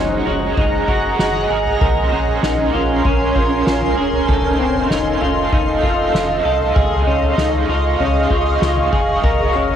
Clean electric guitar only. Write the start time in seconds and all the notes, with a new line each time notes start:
Already playing: D#4
0.27 F#4
0.58 D#4
0.89 F#4
1.20 F#4
1.50 G#4
1.81 A#4
2.12 C#4
2.43 D#4
2.74 F4
3.05 C#4
3.35 F4
3.66 F4
3.97 G#4
4.28 A4
4.59 C4
4.90 D#4
5.22 F4
5.52 D#4
5.83 F4
6.14 F4
6.45 A4
6.76 G#4
7.07 C#4
7.38 D#4
7.69 F4
8.00 C#4
8.31 F4
8.62 F4
8.92 G#4
9.24 A#4
9.55 C#4